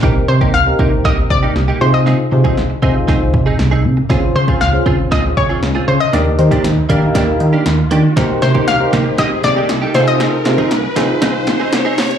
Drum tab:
HH |----------------|----------------|----------------|x-xxx-x-x-x-x-x-|
SD |o---o---o---o---|o---o---o---o---|o---o---o---o---|o---o---o---o---|
BD |o--o--o-o-o-----|---o--o-o-o-----|o--o--o-o-o-----|---o--o-o-------|

HH |x-x-x-x-x-x-x-xx|x-x-x-x-x-x-x-ox|
SD |o-o-o-o-o-o-o-o-|o-o-o-o-o-o-o-o-|
BD |o--o--o-o-o-----|---o--o-o-o-----|